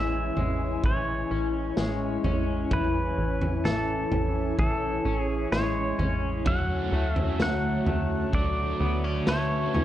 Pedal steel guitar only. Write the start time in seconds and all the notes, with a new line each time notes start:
Already playing: E5
0.86 C#5
2.73 B4
3.65 A4
4.59 A4
5.19 G#4
5.52 C#5
6.47 F#5
7.15 E5
7.42 F#5
8.35 D5
9.29 C#5